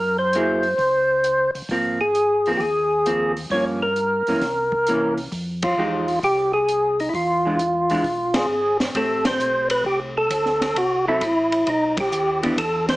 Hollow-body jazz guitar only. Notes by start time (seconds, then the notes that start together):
0.35 F#3 A#3 E4 G#4
1.71 F3 A#3 C4
2.47 F3 A#3 C4
3.06 F3 A#3 C4
3.52 F3 A#3 C#4
4.28 E3 A#3 C#4
4.88 E3 A#3 C#4
5.78 F3 G#3 D#4 G4
7.45 E3 G#3 D4 F4
7.90 E3 G#3 D4 F4
8.96 A3 C4 G4
11.07 F#3 C4 E4 A4
12.43 E3 B3 D4 G4